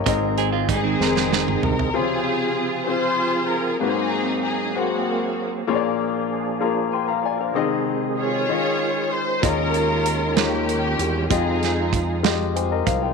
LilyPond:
<<
  \new Staff \with { instrumentName = "Grand piano" } { \time 6/8 \key aes \major \tempo 4. = 64 << { bes'16 r2 r8. | r2. | r2. | r2 <g'' c'''>16 <f'' bes''>16 <d'' aes''>16 <c'' f''>16~ |
<c'' f''>16 r2 r8. | r2. | r2 <g' c'' aes''>16 <bes' ees''>16 <c'' f''>16 <c'' g''>16 | } \\ { <c' ees' aes' ees''>4~ <c' ees' aes' ees''>16 r16 <c' ees' aes' bes' c''>4~ <c' ees' aes' bes' c''>16 r16 | <c f' aes' c''>4~ <c f' aes' c''>16 r16 <c' f' aes' c''>4~ <c' f' aes' c''>16 r16 | <bes ges' aes' ces'' c''>4~ <bes ges' aes' ces'' c''>16 r16 <bes ges' aes' c''>4~ <bes ges' aes' c''>16 r16 | <bes f' aes' des'' d''>4~ <bes f' aes' des'' d''>16 r16 <bes f' aes' bes'>4~ <bes f' aes' bes'>16 r16 |
<c' ees' aes' ees''>4~ <c' ees' aes' ees''>16 r16 <des' f' aes' ees''>4~ <des' f' aes' ees''>16 r16 | <des' f' aes' ees''>4~ <des' f' aes' ees''>16 r16 <aes des' f' bes'>4~ <aes des' f' bes'>16 r16 | <aes f' ees'' g''>4~ <aes f' ees'' g''>16 r16 <aes f' g' ees''>4~ <aes f' g' ees''>16 r16 | } >> }
  \new Staff \with { instrumentName = "Grand piano" } { \clef bass \time 6/8 \key aes \major aes,4. r4. | des4. r4. | aes,4. r4. | bes,4. r4. |
ees4. ees4. | r4. ees4. | r2. | }
  \new Staff \with { instrumentName = "String section" } { \time 6/8 \key aes \major << { r4 aes'4. bes'8 | aes'4. c''4 bes'8 | aes'4 aes'8 ges'4 r8 | r2. |
r4 des''4. c''8 | bes'4. g'4. | aes'4. r4. | } \\ { r4 <c' ees'>4. r8 | <c' f'>4. <f' aes'>4. | <c' ees'>4. <bes c'>4. | r2. |
r4 <f' aes'>4. r8 | <des' f'>4. <bes des'>4. | <c' ees'>4. r4. | } >> }
  \new Staff \with { instrumentName = "Tonewheel organ" } { \time 6/8 \key aes \major r2. | r2. | r2. | r2 <c'' aes''>16 <aes' f''>16 <f' d''>16 <d' bes'>16~ |
<d' bes'>16 r2 r8. | r2. | r2. | }
  \new Staff \with { instrumentName = "Tonewheel organ" } { \time 6/8 \key aes \major <ees aes c' aes'>2. | <f c' f' aes'>2. | <ges bes c' aes'>2. | <f bes d' g' aes'>2. |
<c ees aes aes'>4. <ees aes des' f'>4.~ | <ees aes des' f'>2. | <f g aes ees' f'>2. | }
  \new Staff \with { instrumentName = "Clean electric guitar" } { \time 6/8 \key aes \major bes'8 <c' aes'>16 <aes f'>16 <g ees'>16 <ees c'>4. r16 | r2. | r2. | r2. |
r2. | r2. | r2. | }
  \new Staff \with { instrumentName = "Analog synth bass" } { \clef bass \time 6/8 \key aes \major aes,,4. f,,4 c,8 | r2. | r2. | r2. |
r2. | ees,2~ ees,8 fes,8 | f,2~ f,8 c,8 | }
  \new DrumStaff \with { instrumentName = "Drums" } \drummode { \time 6/8 <hh bd>8 <hh ss>8 <hh bd>8 sn16 sn16 sn16 toml16 tomfh16 tomfh16 | r4. r4. | r4. r4. | r4. r4. |
r4. r4. | <hh bd>8 hh8 hh8 <hh sn>8 hh8 hh8 | <hh bd>8 <hh sn>8 <hh bd>8 <hh sn>8 hh8 <hh bd>8 | }
>>